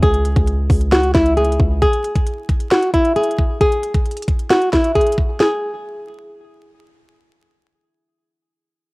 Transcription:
0.03 C#2 G#4, kick, closed hi-hat
0.14 closed hi-hat
0.25 closed hi-hat
0.36 C#2, kick, closed hi-hat
0.47 closed hi-hat
0.70 C#2, kick, open hi-hat
0.81 closed hi-hat
0.92 F#4, snare, closed hi-hat
1.03 closed hi-hat
1.15 C#2 E4, kick, snare, closed hi-hat
1.26 closed hi-hat
1.37 G#4, closed hi-hat
1.45 closed hi-hat
1.52 closed hi-hat
1.59 C#2, kick
1.82 G#4, kick, closed hi-hat
1.93 closed hi-hat
2.04 closed hi-hat
2.15 kick, closed hi-hat
2.27 closed hi-hat
2.49 kick, closed hi-hat
2.60 closed hi-hat
2.71 F#4, snare, closed hi-hat
2.83 closed hi-hat
2.94 E4, kick, closed hi-hat
3.05 closed hi-hat
3.16 G#4, closed hi-hat
3.24 closed hi-hat
3.31 closed hi-hat
3.39 kick
3.61 G#4, kick, closed hi-hat
3.72 closed hi-hat
3.83 closed hi-hat
3.94 kick, closed hi-hat
4.06 closed hi-hat
4.11 closed hi-hat
4.17 closed hi-hat
4.22 closed hi-hat
4.28 kick, closed hi-hat
4.39 closed hi-hat
4.50 F#4, snare, closed hi-hat
4.62 closed hi-hat
4.73 E4, kick, snare, closed hi-hat
4.84 closed hi-hat
4.95 G#4, kick, closed hi-hat
5.01 closed hi-hat
5.06 closed hi-hat
5.12 closed hi-hat
5.18 kick
5.40 G#4, snare

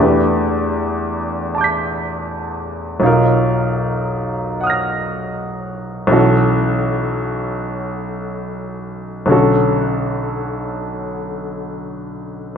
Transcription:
Already playing: E2
0.00 A3 D4 G4 B4
1.55 A5 D6
1.61 G6 B6
3.00 B1 F#3 D#4
3.04 F4 A#4
4.61 F#5 D#6
4.67 F6 A#6
6.07 B1 E3 C#4
6.12 F#4 A4
9.26 B1 D3 C#4
9.31 F#4 A4

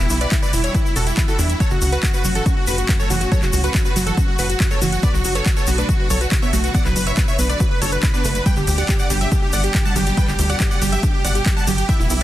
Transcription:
Already playing: B2 E3 G3 E4 G4
0.10 B1 B3 E4, open hi-hat, shaker
0.21 B4 D5 E5, closed hi-hat, shaker
0.32 E3 E4, kick, clap, closed hi-hat, shaker
0.42 B4 D5 E5, shaker
0.53 E1 E4, open hi-hat, shaker
0.63 D4 E4 C#5, closed hi-hat, shaker
0.74 E4 B4, kick, closed hi-hat, shaker
0.85 E4 E5, shaker
0.96 E1 B3 F#4 A4, open hi-hat, shaker
1.07 E4 E5, closed hi-hat, shaker
1.17 E3 E4, kick, clap, closed hi-hat, shaker
1.28 E4 F#4 A4, shaker
1.39 E2 D4 E4, open hi-hat, shaker
1.50 E4 E5, closed hi-hat, shaker
1.60 A2 C#3 F#3 C#4 F#4 A4 C#5, kick, closed hi-hat, shaker
1.70 F#1 C#3 F#4, shaker
1.82 C#2 C#3 F#4, open hi-hat, shaker
1.92 F#4 B4, closed hi-hat, shaker
2.03 F#2 F#4, kick, clap, closed hi-hat, shaker
2.14 F#4 B4, shaker
2.24 F#1 F#3 F#4, open hi-hat, shaker
2.35 E3 F#4 A4, closed hi-hat, shaker
2.46 C#4 F#4, kick, closed hi-hat, shaker
2.57 F#4
2.67 F#1 C#3 F#4 B4, open hi-hat, shaker
2.78 F#4, closed hi-hat, shaker
2.88 F#2 F#4, kick, clap, closed hi-hat, shaker
2.99 F#3 A4 C#5, shaker
3.10 F#1 E3 F#4, open hi-hat, shaker
3.21 F#4, closed hi-hat, shaker
3.32 F#3 A4 C#5, kick, closed hi-hat, shaker
3.42 F#1 C#3 F#4, clap, shaker
3.53 C#2 C#3 F#4, open hi-hat, shaker
3.64 F#4 B4, closed hi-hat, shaker
3.74 F#2 F#4, kick, clap, closed hi-hat, shaker
3.85 F#4 B4, shaker
3.96 F#1 F#3 F#4, open hi-hat, shaker
4.07 E3 F#4 A4, closed hi-hat, shaker
4.17 C#4 F#4, kick, closed hi-hat, shaker
4.28 F#4
4.39 F#1 C#3 F#4 B4, open hi-hat, shaker
4.49 F#4, closed hi-hat, shaker
4.60 F#2 F#4, kick, clap, closed hi-hat, shaker
4.71 F#3 A4 C#5, shaker
4.82 F#1 E3 F#4, open hi-hat, shaker
4.92 F#4, closed hi-hat, shaker
5.03 B2 D3 B3 D4 B4 D5, kick, closed hi-hat, shaker
5.14 B1 F#3 F#4, shaker
5.24 F#1 F#3 F#4, open hi-hat, shaker
5.35 A4 B4 C#5, closed hi-hat, shaker
5.46 B2 F#4, kick, clap, closed hi-hat, shaker
5.57 A4 B4 C#5, shaker
5.67 B1 B3 F#4, open hi-hat, shaker
5.78 A3 D4 B4, closed hi-hat, shaker
5.89 F#4, kick, closed hi-hat, shaker
5.99 F#4 B4
6.10 B1 F#3 A4 C#5, open hi-hat, shaker
6.21 F#4 B4, closed hi-hat, shaker
6.32 B2 F#4, kick, clap, closed hi-hat, shaker
6.42 B3 C#5 E5, shaker
6.53 B1 A3 F#4, open hi-hat, shaker
6.64 F#4 B4, closed hi-hat, shaker
6.74 B3 D5 F#5, kick, closed hi-hat, shaker
6.85 B1 F#3 B4, clap, shaker
6.96 F#1 F#3 B4, open hi-hat, shaker
7.07 B4 C#5 E5, closed hi-hat, shaker
7.17 B2 B4, kick, clap, closed hi-hat, shaker
7.28 B4 C#5 E5, shaker
7.39 B1 B3 B4, open hi-hat, shaker
7.49 A3 B4 D5, closed hi-hat, shaker
7.60 F#4 B4, kick, closed hi-hat, shaker
7.71 B4
7.82 F#1 F#3 A4 C#5, open hi-hat, shaker
7.92 B4, closed hi-hat, shaker
8.03 B2 B4, kick, clap, closed hi-hat, shaker
8.14 B3 D4 B4, shaker
8.24 F#1 A3 B4, open hi-hat, shaker
8.35 B4, closed hi-hat, shaker
8.46 B2 G3 G4 B4 G5, kick, closed hi-hat, ride, shaker
8.56 G1 D3 G4, shaker
8.67 D2 D3 G4, open hi-hat, ride, shaker
8.78 G4 D5 F#5, closed hi-hat, shaker
8.89 G2 G4, kick, clap, closed hi-hat, ride, shaker
8.99 G4 D5 F#5, shaker
9.10 G1 G3 G4, open hi-hat, ride, shaker
9.21 F#3 G4 E5, closed hi-hat, shaker
9.32 D4 G4, kick, closed hi-hat, ride, shaker
9.42 G4
9.53 G1 D3 D5 F#5, open hi-hat, ride, shaker
9.63 G4, closed hi-hat, shaker
9.74 G2 G4, kick, clap, closed hi-hat, ride, shaker
9.85 G3 F#5 A5, shaker
9.96 G1 F#3 G4, open hi-hat, ride, shaker
10.07 G4, closed hi-hat, shaker
10.17 G3 B4 G5, kick, closed hi-hat, ride, shaker
10.28 G1 D3 G4, clap, shaker
10.39 D2 D3 G4, open hi-hat, ride, shaker
10.49 G4 D5 F#5, closed hi-hat, shaker
10.60 G2 G4, kick, clap, closed hi-hat, ride, shaker
10.71 G4 D5 F#5, shaker
10.82 G1 G3 G4, open hi-hat, ride, shaker
10.92 F#3 G4 E5, closed hi-hat, shaker
11.03 D4 G4, kick, closed hi-hat, ride, shaker
11.14 G4
11.24 G1 D3 D5 F#5, open hi-hat, ride, shaker
11.35 G4, closed hi-hat, shaker
11.46 G2 G4, kick, clap, closed hi-hat, ride, shaker
11.57 G3 F#5 A5, shaker
11.67 G1 F#3 G4, open hi-hat, ride, shaker
11.78 G4, closed hi-hat, shaker
11.89 B2 E3 G3 E4 G4 E5, kick, closed hi-hat, ride, shaker
11.99 E1 B3 E4, shaker
12.10 B1 B3 E4, open hi-hat, ride, shaker

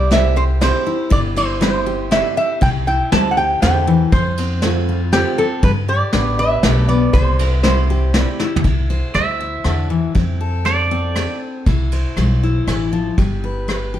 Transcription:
Already playing: C2 G3 E4 G4 D5
0.11 G3 C4 E4 G4 C5 E5, snare, ride
0.36 G4 C5
0.61 C3 C4 E4 G4 C5, snare, ride
0.86 E4
1.10 G1 C3 D5, kick, ride
1.36 E4 C5, ride
1.61 G3 C4 E4 G4 C5, snare, ride
1.86 G4
2.11 C3 C4 E4 G4 D5 E5, snare, ride
2.37 E4 E5
2.61 C2 C3 G5, kick, ride
2.87 E4 G5
3.11 D2 G3 C4 E4 G4 C5 A5, snare, ride
3.31 F#5
3.37 G4 G5
3.62 E2 D3 C4 E4 G4 C5 G5, snare, ride
3.87 E3
4.12 F2 F3 C5, kick, ride
4.37 C4, ride
4.62 A3 C4 F4 A4 C5, snare, ride
4.89 F4
5.12 C3 C4 F4 G4 A4 C5, snare, ride
5.38 C4 A4
5.63 G2 G3 B4, kick, ride
5.88 G4 D5
6.13 A1 B3 D4 G4 B4, snare, ride
6.39 B4 E5
6.63 B1 A3 B3 D4 G4 B4, snare, ride
6.88 B3 D5
7.13 C2 C3 C5, kick, ride
7.39 E4, ride
7.63 G3 C4 E4 G4 C5, snare, ride
7.90 G4
8.14 C3 C4 E4 G4 D5, snare, ride
8.40 E4, snare
8.56 floor tom
8.64 C2 C3 E4, kick, ride
8.90 C5, ride
9.14 D2 G3 E5, cross-stick, ride
9.40 E4
9.64 E2 D3, cross-stick, ride
9.90 E3
10.15 F2 F3 C4, kick, ride
10.41 A4
10.65 A3 D5, cross-stick, ride
10.91 C4
11.16 C3, cross-stick, ride
11.66 C2 C3 E4, kick, ride
11.92 C5, ride
12.17 B1 G3, cross-stick, ride
12.43 E4
12.67 A1 E3, cross-stick, ride
12.93 F3
13.18 G1 G3 G4, kick, ride
13.44 B4
13.68 D4, cross-stick, ride
13.94 G4

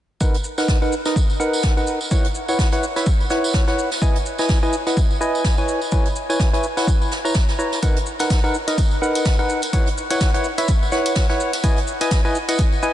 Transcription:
0.20 D#4 A#4 B4 F#5, kick, tambourine, shaker
0.34 closed hi-hat, tambourine
0.44 shaker
0.58 D#4 A#4 B4 F#5, snare, tambourine
0.68 kick, snare, tambourine, shaker
0.82 D#4 A#4 B4 F#5, tambourine
0.92 shaker
1.05 D#4 A#4 B4 D#5, snare, tambourine
1.16 kick, tambourine, shaker
1.30 tambourine
1.40 D#4 A#4 B4 F#5, shaker
1.53 tambourine
1.63 kick, snare, shaker
1.77 D#4 A#4 B4 F#5, tambourine
1.87 shaker
2.01 tambourine
2.11 E4 B4 C#5 F#5, kick, tambourine, shaker
2.24 closed hi-hat, tambourine
2.35 shaker
2.48 E4 B4 C#5 F#5, tambourine
2.59 kick, snare, tambourine, shaker
2.72 E4 B4 C#5 F#5, closed hi-hat, tambourine
2.83 shaker
2.96 E4 B4 C#5 E5, snare, tambourine
3.06 kick, tambourine, shaker
3.20 tambourine
3.30 E4 B4 C#5 F#5, snare, shaker
3.44 tambourine
3.53 kick, snare, tambourine, shaker
3.67 E4 B4 C#5 F#5, snare, tambourine
3.79 shaker
3.91 snare, tambourine
4.02 E4 B4 D#5 G#5, kick, tambourine, shaker
4.15 closed hi-hat, tambourine
4.26 shaker
4.38 E4 B4 D#5 G#5, snare, tambourine
4.49 kick, snare, tambourine, shaker
4.63 E4 B4 D#5 G#5, tambourine
4.73 shaker
4.86 E4 B4 D#5 F#5, snare, tambourine
4.97 kick, tambourine, shaker
5.11 tambourine
5.21 E4 B4 D#5 G#5, shaker
5.35 tambourine
5.44 kick, snare, tambourine, shaker
5.57 E4 B4 C#5 G#5, tambourine
5.68 shaker
5.82 tambourine
5.92 E4 B4 C#5 G#5, kick, tambourine, shaker
6.05 closed hi-hat, tambourine
6.16 shaker
6.29 E4 B4 C#5 G#5, tambourine
6.40 kick, snare, shaker
6.53 E4 B4 C#5 G#5, closed hi-hat, tambourine
6.63 shaker
6.77 E4 B4 C#5 F#5, snare, tambourine
6.87 kick, shaker
7.01 tambourine
7.11 snare, shaker
7.25 E4 B4 C#5 A#5, tambourine
7.34 kick, snare, shaker
7.48 snare, tambourine
7.59 E4 B4 C#5 A#5, shaker
7.72 snare, tambourine
7.83 D#4 A#4 B4 F#5, kick, closed hi-hat, tambourine, shaker
7.96 closed hi-hat, tambourine
8.06 shaker
8.19 D#4 A#4 B4 F#5, snare, closed hi-hat, tambourine
8.30 kick, snare, closed hi-hat, tambourine, shaker
8.44 D#4 A#4 B4 F#5, tambourine
8.54 shaker
8.67 D#4 A#4 B4 D#5, snare, closed hi-hat, tambourine
8.78 kick, closed hi-hat, tambourine, shaker
8.91 tambourine
9.02 D#4 A#4 B4 F#5, shaker
9.15 closed hi-hat, tambourine
9.25 kick, snare, closed hi-hat, tambourine, shaker
9.39 D#4 A#4 B4 F#5, tambourine
9.49 shaker
9.62 closed hi-hat, tambourine
9.73 E4 B4 C#5 F#5, kick, closed hi-hat, tambourine, shaker
9.86 closed hi-hat, tambourine
9.98 shaker
10.10 E4 B4 C#5 F#5, closed hi-hat, tambourine
10.20 kick, snare, closed hi-hat, tambourine, shaker
10.34 E4 B4 C#5 F#5, closed hi-hat, tambourine
10.44 shaker
10.58 E4 B4 C#5 E5, snare, closed hi-hat, tambourine
10.68 kick, closed hi-hat, tambourine, shaker
10.83 tambourine
10.92 E4 B4 C#5 F#5, snare, shaker
11.06 closed hi-hat, tambourine
11.15 kick, snare, closed hi-hat, tambourine, shaker
11.29 E4 B4 C#5 F#5, snare, tambourine
11.40 shaker
11.53 snare, closed hi-hat, tambourine
11.64 E4 B4 D#5 G#5, kick, closed hi-hat, tambourine, shaker
11.77 closed hi-hat, tambourine
11.87 shaker
12.01 E4 B4 D#5 G#5, snare, closed hi-hat, tambourine
12.11 kick, snare, closed hi-hat, tambourine, shaker
12.25 E4 B4 D#5 G#5, tambourine
12.35 shaker
12.48 E4 B4 D#5 F#5, snare, closed hi-hat, tambourine
12.58 kick, closed hi-hat, tambourine, shaker
12.72 tambourine
12.83 E4 B4 D#5 G#5, shaker

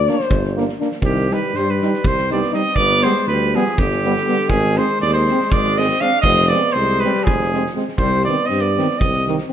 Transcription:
Already playing: D5
0.08 A#3 D4 C5, snare
0.20 snare
0.29 G1, kick
0.44 snare
0.56 A#3 D4, snare
0.69 snare
0.79 A#3 D4, snare
0.92 snare
1.02 C2 D#3 G4, kick
1.31 G3 D#4 B4, snare
1.53 G2 G3 C5, snare
1.69 G3 B4
1.81 G3 D#4, snare
1.93 snare
2.04 C2 G3 C5, kick
2.18 snare
2.30 G3 B3 D#4 D5, snare
2.42 snare
2.51 G3 D#4 D#5, snare
2.57 C4
2.75 G1 B3 D5, kick
3.02 G3 B3 C5, snare
3.06 G#3
3.27 D2 G3 B4, snare
3.55 F3 G3 B3 G#4, snare
3.67 snare
3.78 G1 D3 G4, kick
3.91 snare
4.04 G3 B3, snare
4.16 snare
4.27 G3 B3, snare
4.49 G#1 D#3 G#4, kick
4.77 G#3 C4 C5, snare
5.00 D#2 G#3 D5, snare
5.13 G#3 C5
5.28 G#3 C4, snare
5.40 snare
5.51 G#1 G#3 D5, kick
5.64 snare
5.77 G#3 C4 D#5, snare
5.89 snare
6.00 G#3 C4 D4 F5, snare
6.21 F1 C4 D#5, kick
6.38 snare
6.49 C4 D5, snare
6.53 G#3 B3
6.72 C2 C5, snare
6.77 G#3
6.89 snare
7.00 G#3 C4 B4, snare
7.05 G3
7.15 snare
7.24 F1 F3 G#4, kick
7.41 snare
7.52 G#3 C4, snare
7.66 snare
7.75 G#3 C4, snare
7.88 snare
7.98 C2 G3 C5, kick
8.25 D#3 B3 C4 D5, snare
8.46 C4 D#5
8.50 G2, snare
8.61 B3 D5
8.77 D#3 C4, snare
8.90 snare
8.99 C2 C4 D#5, kick
9.14 snare
9.26 D#3 C4, snare
9.38 snare
9.48 C4, snare

